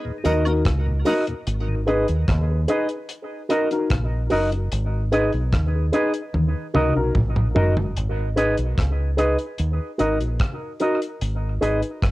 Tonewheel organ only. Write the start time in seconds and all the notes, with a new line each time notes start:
0.05 D#2 A#2
0.25 F#3 A#3 D#4
0.45 A#3 D#4
0.86 D#2 A#2
1.06 F#3 A#3 D#4
1.27 D#2 A#2
1.68 G#2 D#3